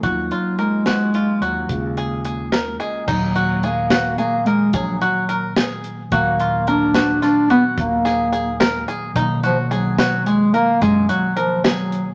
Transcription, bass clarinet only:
X:1
M:11/8
L:1/16
Q:1/4=109
K:Bbphr
V:1 name="Bass clarinet" clef=bass
z2 G,2 A,6 G,2 D,6 z4 | [K:Ebm] G,4 B,4 B,2 A,2 G,6 z4 | B,4 =D4 D2 C2 B,6 z4 | z2 F,2 ^F,4 A,2 ^A,2 _A,2 F,2 =F,2 ^F,3 z |]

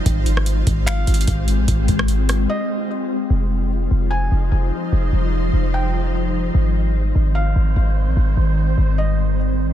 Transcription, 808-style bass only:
X:1
M:4/4
L:1/16
Q:1/4=148
K:Fm
V:1 name="808-style bass" clef=bass
A,,,6 A,,,4 A,,,2 A,,,3 B,,, | A,,,2 A,,,6 z8 | F,,,6 F,,,4 F,,,2 F,,,2 z2 | F,,,2 F,,,4 F,,,8- F,,,2 |
A,,,6 A,,,4 A,,,2 A,,,3 B,,, | A,,,2 A,,,4 A,,,8- A,,,2 |]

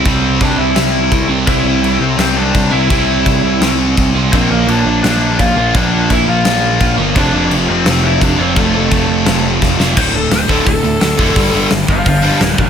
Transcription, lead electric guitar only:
X:1
M:4/4
L:1/8
Q:1/4=170
K:Cmix
V:1 name="Lead electric guitar"
[Cc]2 [Dd] [Ee]4 z | [Ee]3 [Cc] [Cc] [Dd]2 [Ee]- | [Ee]4- [Ee] z3 | [Cc] [B,B] [Dd]2 [Dd]2 [Ff]2 |
[Dd]2 [Ee] [Ff]4 z | [Dd]2 z [Cc] [Cc] [Ee] [Dd] [Cc] | [A,A] [A,A]4 z3 | c A c A A4- |
A2 z [cf] [cf] [cf] [Bd] [Bd] |]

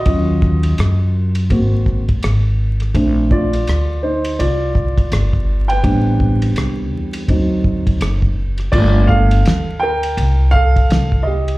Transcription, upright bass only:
X:1
M:4/4
L:1/8
Q:"Swing 16ths" 1/4=83
K:Bb
V:1 name="Upright bass" clef=bass
E,,2 _G,,2 _A,,,2 A,,,2 | B,,,2 D,,2 C,,2 G,,,2 | A,,,2 C,, =E,, D,,2 ^F,,,2 | G,,,2 D,,2 C,,2 C,,2 |]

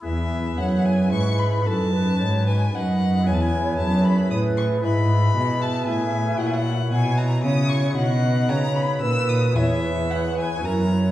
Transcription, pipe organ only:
X:1
M:3/4
L:1/8
Q:1/4=114
K:E
V:1 name="Pipe organ"
[EGB]6 | [DFB]6 | [EGB]6 | [EGB]6 |
[K:B] [EFc]6 | [DFB]6 | [EGc]4 [EFc]2 |]
V:2 name="Pipe organ" clef=bass
E,,2 F,,2 G,,2 | F,,2 G,,2 F,,2 | E,,2 F,,2 A,,2 | G,,2 B,,2 A,,2 |
[K:B] A,,2 B,,2 C,2 | B,,2 C,2 A,,2 | E,,4 F,,2 |]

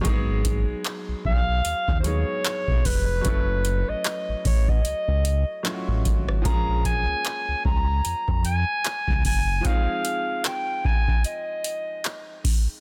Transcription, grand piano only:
X:1
M:4/4
L:1/8
Q:"Swing 16ths" 1/4=75
K:Bbm
V:1 name="Grand piano"
[G,A,B,_CEA]4- [G,A,B,CEA] [G,A,CEA]3 | [G,=A,D_F=A]6 [G,A,DF=FG]2 | [F,A,B,DA]8 | [F,A,CEA]8 |]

